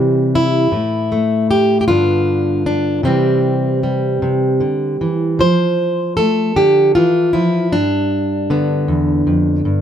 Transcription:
0, 0, Header, 1, 2, 480
1, 0, Start_track
1, 0, Key_signature, 0, "major"
1, 0, Tempo, 777202
1, 440, Time_signature, 6, 3, 24, 8
1, 6061, End_track
2, 0, Start_track
2, 0, Title_t, "Steel-string acoustic guitar"
2, 0, Program_c, 0, 25
2, 0, Note_on_c, 0, 48, 71
2, 0, Note_on_c, 0, 52, 45
2, 0, Note_on_c, 0, 55, 47
2, 0, Note_on_c, 0, 60, 87
2, 218, Note_on_c, 0, 64, 90
2, 411, Note_off_c, 0, 48, 0
2, 414, Note_off_c, 0, 52, 0
2, 438, Note_off_c, 0, 60, 0
2, 444, Note_on_c, 0, 45, 68
2, 445, Note_off_c, 0, 55, 0
2, 691, Note_on_c, 0, 57, 43
2, 924, Note_off_c, 0, 64, 0
2, 930, Note_on_c, 0, 67, 95
2, 1110, Note_off_c, 0, 67, 0
2, 1117, Note_on_c, 0, 67, 75
2, 1133, Note_off_c, 0, 57, 0
2, 1157, Note_off_c, 0, 67, 0
2, 1158, Note_off_c, 0, 45, 0
2, 1159, Note_on_c, 0, 65, 96
2, 1162, Note_on_c, 0, 43, 74
2, 1168, Note_on_c, 0, 50, 48
2, 1170, Note_on_c, 0, 59, 47
2, 1177, Note_on_c, 0, 62, 46
2, 1637, Note_off_c, 0, 62, 0
2, 1645, Note_on_c, 0, 62, 78
2, 1850, Note_off_c, 0, 43, 0
2, 1853, Note_off_c, 0, 59, 0
2, 1873, Note_on_c, 0, 48, 68
2, 1877, Note_off_c, 0, 50, 0
2, 1877, Note_off_c, 0, 65, 0
2, 1879, Note_on_c, 0, 52, 44
2, 1880, Note_off_c, 0, 62, 0
2, 1883, Note_on_c, 0, 60, 77
2, 1887, Note_on_c, 0, 55, 47
2, 2361, Note_off_c, 0, 55, 0
2, 2368, Note_on_c, 0, 55, 42
2, 2600, Note_off_c, 0, 48, 0
2, 2608, Note_on_c, 0, 48, 57
2, 2841, Note_off_c, 0, 52, 0
2, 2844, Note_on_c, 0, 50, 56
2, 2850, Note_off_c, 0, 48, 0
2, 3089, Note_off_c, 0, 50, 0
2, 3094, Note_on_c, 0, 52, 47
2, 3329, Note_on_c, 0, 53, 65
2, 3335, Note_off_c, 0, 52, 0
2, 3337, Note_off_c, 0, 60, 0
2, 3338, Note_off_c, 0, 55, 0
2, 3339, Note_on_c, 0, 72, 105
2, 3807, Note_off_c, 0, 72, 0
2, 3809, Note_on_c, 0, 69, 96
2, 3820, Note_on_c, 0, 57, 59
2, 4050, Note_off_c, 0, 57, 0
2, 4052, Note_on_c, 0, 50, 64
2, 4054, Note_on_c, 0, 67, 92
2, 4290, Note_off_c, 0, 67, 0
2, 4293, Note_on_c, 0, 65, 99
2, 4296, Note_off_c, 0, 50, 0
2, 4303, Note_on_c, 0, 52, 63
2, 4525, Note_off_c, 0, 69, 0
2, 4527, Note_on_c, 0, 64, 80
2, 4530, Note_off_c, 0, 53, 0
2, 4534, Note_off_c, 0, 52, 0
2, 4537, Note_on_c, 0, 53, 57
2, 4768, Note_off_c, 0, 65, 0
2, 4770, Note_off_c, 0, 64, 0
2, 4771, Note_on_c, 0, 62, 92
2, 4774, Note_on_c, 0, 43, 68
2, 4775, Note_off_c, 0, 53, 0
2, 5251, Note_on_c, 0, 50, 61
2, 5255, Note_on_c, 0, 59, 46
2, 5483, Note_off_c, 0, 43, 0
2, 5486, Note_on_c, 0, 40, 66
2, 5722, Note_off_c, 0, 40, 0
2, 5724, Note_on_c, 0, 41, 61
2, 5959, Note_off_c, 0, 41, 0
2, 5961, Note_on_c, 0, 43, 62
2, 6061, Note_off_c, 0, 43, 0
2, 6061, Note_off_c, 0, 50, 0
2, 6061, Note_off_c, 0, 59, 0
2, 6061, Note_off_c, 0, 62, 0
2, 6061, End_track
0, 0, End_of_file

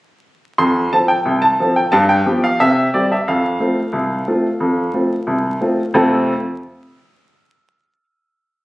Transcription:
0, 0, Header, 1, 2, 480
1, 0, Start_track
1, 0, Key_signature, -1, "major"
1, 0, Tempo, 668896
1, 419, Time_signature, 2, 2, 24, 8
1, 6207, End_track
2, 0, Start_track
2, 0, Title_t, "Upright piano"
2, 0, Program_c, 0, 0
2, 419, Note_on_c, 0, 84, 80
2, 421, Note_on_c, 0, 41, 74
2, 624, Note_off_c, 0, 41, 0
2, 647, Note_off_c, 0, 84, 0
2, 665, Note_on_c, 0, 81, 76
2, 668, Note_on_c, 0, 53, 38
2, 673, Note_on_c, 0, 60, 42
2, 675, Note_on_c, 0, 69, 42
2, 776, Note_on_c, 0, 79, 74
2, 783, Note_off_c, 0, 81, 0
2, 798, Note_off_c, 0, 53, 0
2, 801, Note_off_c, 0, 60, 0
2, 803, Note_off_c, 0, 69, 0
2, 901, Note_on_c, 0, 36, 66
2, 970, Note_off_c, 0, 79, 0
2, 1017, Note_on_c, 0, 81, 88
2, 1104, Note_off_c, 0, 36, 0
2, 1148, Note_on_c, 0, 53, 52
2, 1156, Note_on_c, 0, 60, 45
2, 1158, Note_on_c, 0, 69, 54
2, 1246, Note_off_c, 0, 81, 0
2, 1265, Note_on_c, 0, 79, 74
2, 1278, Note_off_c, 0, 53, 0
2, 1283, Note_off_c, 0, 60, 0
2, 1284, Note_off_c, 0, 69, 0
2, 1377, Note_on_c, 0, 81, 94
2, 1382, Note_off_c, 0, 79, 0
2, 1382, Note_on_c, 0, 43, 93
2, 1497, Note_off_c, 0, 81, 0
2, 1501, Note_on_c, 0, 79, 92
2, 1584, Note_off_c, 0, 43, 0
2, 1622, Note_on_c, 0, 53, 51
2, 1623, Note_on_c, 0, 59, 52
2, 1628, Note_on_c, 0, 67, 59
2, 1692, Note_off_c, 0, 79, 0
2, 1749, Note_on_c, 0, 77, 87
2, 1753, Note_off_c, 0, 53, 0
2, 1754, Note_off_c, 0, 59, 0
2, 1757, Note_off_c, 0, 67, 0
2, 1864, Note_off_c, 0, 77, 0
2, 1866, Note_on_c, 0, 76, 87
2, 1867, Note_on_c, 0, 48, 90
2, 2055, Note_off_c, 0, 76, 0
2, 2067, Note_off_c, 0, 48, 0
2, 2108, Note_on_c, 0, 74, 72
2, 2109, Note_on_c, 0, 55, 51
2, 2113, Note_on_c, 0, 60, 43
2, 2117, Note_on_c, 0, 67, 48
2, 2223, Note_off_c, 0, 74, 0
2, 2236, Note_on_c, 0, 76, 59
2, 2239, Note_off_c, 0, 55, 0
2, 2241, Note_off_c, 0, 60, 0
2, 2244, Note_off_c, 0, 67, 0
2, 2348, Note_off_c, 0, 76, 0
2, 2354, Note_on_c, 0, 77, 64
2, 2355, Note_on_c, 0, 41, 68
2, 2553, Note_off_c, 0, 41, 0
2, 2584, Note_on_c, 0, 57, 37
2, 2590, Note_on_c, 0, 60, 39
2, 2592, Note_on_c, 0, 65, 38
2, 2715, Note_off_c, 0, 57, 0
2, 2719, Note_off_c, 0, 60, 0
2, 2721, Note_off_c, 0, 65, 0
2, 2819, Note_on_c, 0, 36, 54
2, 3025, Note_off_c, 0, 36, 0
2, 3069, Note_on_c, 0, 57, 35
2, 3071, Note_on_c, 0, 60, 35
2, 3073, Note_on_c, 0, 65, 45
2, 3199, Note_off_c, 0, 57, 0
2, 3201, Note_off_c, 0, 60, 0
2, 3202, Note_off_c, 0, 65, 0
2, 3303, Note_on_c, 0, 41, 62
2, 3507, Note_off_c, 0, 41, 0
2, 3542, Note_on_c, 0, 57, 30
2, 3545, Note_on_c, 0, 60, 36
2, 3548, Note_on_c, 0, 65, 38
2, 3675, Note_off_c, 0, 57, 0
2, 3677, Note_off_c, 0, 60, 0
2, 3679, Note_off_c, 0, 65, 0
2, 3697, Note_off_c, 0, 77, 0
2, 3782, Note_on_c, 0, 36, 54
2, 3988, Note_off_c, 0, 36, 0
2, 4026, Note_on_c, 0, 57, 35
2, 4028, Note_on_c, 0, 60, 41
2, 4034, Note_on_c, 0, 65, 41
2, 4158, Note_off_c, 0, 57, 0
2, 4159, Note_off_c, 0, 60, 0
2, 4164, Note_off_c, 0, 65, 0
2, 4263, Note_on_c, 0, 41, 84
2, 4263, Note_on_c, 0, 48, 76
2, 4267, Note_on_c, 0, 65, 73
2, 4269, Note_on_c, 0, 60, 83
2, 4272, Note_on_c, 0, 57, 75
2, 4273, Note_on_c, 0, 69, 74
2, 4531, Note_off_c, 0, 41, 0
2, 4531, Note_off_c, 0, 48, 0
2, 4533, Note_off_c, 0, 65, 0
2, 4534, Note_off_c, 0, 60, 0
2, 4535, Note_off_c, 0, 57, 0
2, 4536, Note_off_c, 0, 69, 0
2, 6207, End_track
0, 0, End_of_file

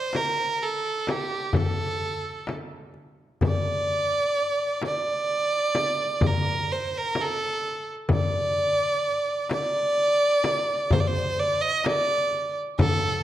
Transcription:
0, 0, Header, 1, 4, 480
1, 0, Start_track
1, 0, Tempo, 937500
1, 1748, Time_signature, 10, 3, 24, 8
1, 6774, End_track
2, 0, Start_track
2, 0, Title_t, "Violin"
2, 0, Program_c, 0, 40
2, 0, Note_on_c, 0, 72, 91
2, 83, Note_on_c, 0, 70, 84
2, 90, Note_off_c, 0, 72, 0
2, 322, Note_on_c, 0, 69, 72
2, 330, Note_off_c, 0, 70, 0
2, 570, Note_on_c, 0, 67, 76
2, 577, Note_off_c, 0, 69, 0
2, 802, Note_on_c, 0, 69, 81
2, 810, Note_off_c, 0, 67, 0
2, 1275, Note_off_c, 0, 69, 0
2, 1774, Note_on_c, 0, 74, 95
2, 2461, Note_off_c, 0, 74, 0
2, 2491, Note_on_c, 0, 74, 97
2, 3208, Note_on_c, 0, 70, 87
2, 3216, Note_off_c, 0, 74, 0
2, 3442, Note_on_c, 0, 72, 77
2, 3449, Note_off_c, 0, 70, 0
2, 3570, Note_on_c, 0, 70, 84
2, 3578, Note_off_c, 0, 72, 0
2, 3692, Note_on_c, 0, 69, 84
2, 3700, Note_off_c, 0, 70, 0
2, 4041, Note_off_c, 0, 69, 0
2, 4164, Note_on_c, 0, 74, 97
2, 4858, Note_off_c, 0, 74, 0
2, 4880, Note_on_c, 0, 74, 105
2, 5594, Note_on_c, 0, 72, 94
2, 5602, Note_off_c, 0, 74, 0
2, 5633, Note_on_c, 0, 74, 79
2, 5641, Note_off_c, 0, 72, 0
2, 5670, Note_on_c, 0, 72, 95
2, 5678, Note_off_c, 0, 74, 0
2, 5834, Note_on_c, 0, 74, 97
2, 5841, Note_off_c, 0, 72, 0
2, 5947, Note_on_c, 0, 75, 100
2, 5955, Note_off_c, 0, 74, 0
2, 6071, Note_on_c, 0, 74, 105
2, 6079, Note_off_c, 0, 75, 0
2, 6432, Note_off_c, 0, 74, 0
2, 6550, Note_on_c, 0, 69, 93
2, 6774, Note_off_c, 0, 69, 0
2, 6774, End_track
3, 0, Start_track
3, 0, Title_t, "Darbuka"
3, 66, Note_on_c, 9, 63, 63
3, 117, Note_off_c, 9, 63, 0
3, 549, Note_on_c, 9, 63, 62
3, 600, Note_off_c, 9, 63, 0
3, 783, Note_on_c, 9, 64, 87
3, 834, Note_off_c, 9, 64, 0
3, 1265, Note_on_c, 9, 63, 67
3, 1316, Note_off_c, 9, 63, 0
3, 1505, Note_on_c, 9, 62, 24
3, 1556, Note_off_c, 9, 62, 0
3, 1746, Note_on_c, 9, 64, 75
3, 1798, Note_off_c, 9, 64, 0
3, 1984, Note_on_c, 9, 62, 22
3, 2035, Note_off_c, 9, 62, 0
3, 2466, Note_on_c, 9, 63, 64
3, 2517, Note_off_c, 9, 63, 0
3, 3180, Note_on_c, 9, 64, 93
3, 3232, Note_off_c, 9, 64, 0
3, 3663, Note_on_c, 9, 63, 68
3, 3714, Note_off_c, 9, 63, 0
3, 3904, Note_on_c, 9, 62, 23
3, 3955, Note_off_c, 9, 62, 0
3, 4142, Note_on_c, 9, 64, 79
3, 4193, Note_off_c, 9, 64, 0
3, 4385, Note_on_c, 9, 62, 23
3, 4436, Note_off_c, 9, 62, 0
3, 4861, Note_on_c, 9, 63, 63
3, 4912, Note_off_c, 9, 63, 0
3, 5344, Note_on_c, 9, 63, 66
3, 5396, Note_off_c, 9, 63, 0
3, 5584, Note_on_c, 9, 64, 100
3, 5635, Note_off_c, 9, 64, 0
3, 6064, Note_on_c, 9, 63, 74
3, 6115, Note_off_c, 9, 63, 0
3, 6302, Note_on_c, 9, 62, 29
3, 6353, Note_off_c, 9, 62, 0
3, 6547, Note_on_c, 9, 64, 89
3, 6598, Note_off_c, 9, 64, 0
3, 6774, End_track
4, 0, Start_track
4, 0, Title_t, "Frame drum"
4, 75, Note_on_c, 9, 64, 67
4, 127, Note_off_c, 9, 64, 0
4, 555, Note_on_c, 9, 64, 72
4, 607, Note_off_c, 9, 64, 0
4, 788, Note_on_c, 9, 64, 73
4, 840, Note_off_c, 9, 64, 0
4, 1274, Note_on_c, 9, 64, 61
4, 1325, Note_off_c, 9, 64, 0
4, 1752, Note_on_c, 9, 64, 72
4, 1803, Note_off_c, 9, 64, 0
4, 2471, Note_on_c, 9, 64, 64
4, 2522, Note_off_c, 9, 64, 0
4, 2943, Note_on_c, 9, 64, 70
4, 2994, Note_off_c, 9, 64, 0
4, 3180, Note_on_c, 9, 64, 77
4, 3231, Note_off_c, 9, 64, 0
4, 3662, Note_on_c, 9, 64, 69
4, 3713, Note_off_c, 9, 64, 0
4, 4141, Note_on_c, 9, 64, 87
4, 4192, Note_off_c, 9, 64, 0
4, 4869, Note_on_c, 9, 64, 70
4, 4920, Note_off_c, 9, 64, 0
4, 5346, Note_on_c, 9, 64, 78
4, 5397, Note_off_c, 9, 64, 0
4, 5594, Note_on_c, 9, 64, 84
4, 5645, Note_off_c, 9, 64, 0
4, 6072, Note_on_c, 9, 64, 79
4, 6123, Note_off_c, 9, 64, 0
4, 6550, Note_on_c, 9, 64, 97
4, 6601, Note_off_c, 9, 64, 0
4, 6774, End_track
0, 0, End_of_file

